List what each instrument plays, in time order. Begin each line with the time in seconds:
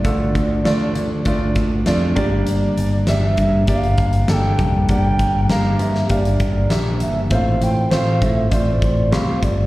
Already playing: grand piano A3 D4 F4 G4 D5 F5, ocarina D5
0.04 picked electric bass D2, grand piano D3 A3 D4 F4 A4, kick, closed hi-hat
0.35 picked electric bass D2, kick, closed hi-hat
0.64 picked electric bass D2, grand piano A3 D4 F4 D5, snare, closed hi-hat
0.95 picked electric bass D3, closed hi-hat
1.25 picked electric bass D2, grand piano A3 D4 F4 D5, kick, closed hi-hat
1.56 picked electric bass D2, kick, closed hi-hat
1.86 picked electric bass F2, grand piano A3 D4 F4 D5, snare, closed hi-hat
2.15 picked electric bass G1, grand piano G2 A#3 D4 G4 D5, kick, closed hi-hat
2.47 ocarina D5, closed hi-hat
2.77 picked electric bass G1, closed hi-hat
3.07 picked electric bass G1, grand piano A#3 D4 G4 E5, ocarina E5, snare, closed hi-hat
3.37 picked electric bass G2, kick, closed hi-hat
3.67 picked electric bass G1, grand piano A#3 D4 G4 D5, ocarina F5, kick, closed hi-hat
3.84 closed hi-hat
3.98 picked electric bass G1, kick, closed hi-hat
4.13 closed hi-hat
4.28 picked electric bass G1, grand piano A#3 D4 G4 A4, ocarina A5, snare, closed hi-hat
4.34 ocarina G5
4.59 picked electric bass F1, grand piano G2, kick, closed hi-hat
4.89 picked electric bass G1, grand piano A#3 D4 G4 D5, ocarina G5, kick, closed hi-hat
5.19 picked electric bass G1, kick, closed hi-hat
5.49 picked electric bass G1, grand piano A#3 D4 G4 A#4, ocarina F5, snare, closed hi-hat
5.79 picked electric bass G2, ocarina E5, closed hi-hat
5.95 snare
6.10 picked electric bass G1, grand piano A#3 D4 G4 F5, ocarina D5, kick, closed hi-hat
6.25 closed hi-hat
6.40 picked electric bass G1, kick, closed hi-hat
6.70 picked electric bass A#1, grand piano A#3 D4 G4 E5, snare, closed hi-hat
7.00 picked electric bass G1, ocarina E5, closed hi-hat
7.31 picked electric bass A1, grand piano A2 A3 C4 F4 C5, ocarina F5, kick, closed hi-hat
7.61 picked electric bass A1, ocarina G5, closed hi-hat
7.91 picked electric bass A1, grand piano A3 C4 F4 C5, ocarina F5, snare, closed hi-hat
8.22 picked electric bass A2, ocarina E5, kick, closed hi-hat
8.51 picked electric bass A1, grand piano A3 C4 F4 C5, ocarina D5, kick, closed hi-hat
8.82 picked electric bass A1, kick, closed hi-hat
9.11 picked electric bass C2, grand piano A3 C4 F4 G4, ocarina F5, snare, closed hi-hat
9.43 picked electric bass G1, ocarina D5, kick, closed hi-hat